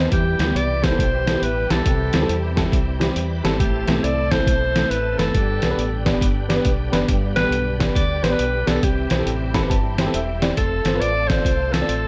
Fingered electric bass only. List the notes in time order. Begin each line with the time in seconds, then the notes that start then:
0.12 E2
0.39 D2
0.55 C2
0.99 B1
1.42 A1
1.70 B1
1.86 C2
2.14 D2
2.29 E2
2.72 C2
3.16 E2
3.44 G#1
3.59 A1
3.88 B1
4.04 C2
4.46 B1
4.90 A1
5.18 F#1
5.35 G1
5.63 B1
5.78 A1
6.21 G1
6.65 B1
6.92 F#1
7.08 G1
7.36 A1
7.50 B1
7.95 D2
8.23 A1
8.39 B1
8.68 B1
8.83 C2
9.11 B1
9.26 A1
9.70 G1
10.14 E1
10.57 F1
10.85 G1
11.00 A1
11.45 C2
11.89 A1